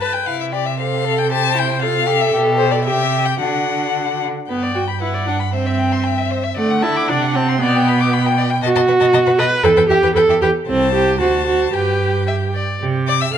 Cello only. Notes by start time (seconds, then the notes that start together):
Already playing: G2
0.28 C3
2.34 B2
2.86 C3
3.41 D3
4.50 G2
6.57 D3
7.10 C3
7.62 B2
8.63 B2
8.76 B2
8.88 B2
9.01 B2
9.13 B2
9.27 B2
9.39 B2
9.64 E2
9.77 E2
9.89 E2
10.03 E2
10.15 E2
10.28 E2
10.41 E2
10.67 C2
11.19 D2
11.74 G2
12.81 C3
13.34 C3